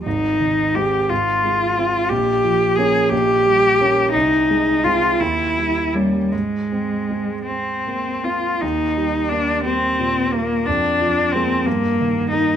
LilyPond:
<<
  \new Staff \with { instrumentName = "Cello" } { \time 6/8 \key aes \major \tempo 4. = 58 ees'4 g'8 f'4. | g'4 aes'8 g'4. | ees'4 f'8 fes'4 g8 | aes4. c'4 f'8 |
\key ees \major ees'4 d'8 c'4 bes8 | d'4 c'8 bes4 ees'8 | }
  \new Staff \with { instrumentName = "Grand piano" } { \clef bass \time 6/8 \key aes \major aes,,8 ees8 <aes c'>8 aes,,8 aes8 c'8 | bes,,8 f8 <bes des'>8 bes,,8 g8 <bes des'>8 | c,8 aes8 <aes c'>8 ees,8 g8 <bes des'>8 | aes,8 c'8 aes8 c'8 bes8 c'8 |
\key ees \major ees,8 g8 bes8 g8 bes,8 bes8 | f,8 f8 <aes bes>8 g,8 ees8 bes8 | }
>>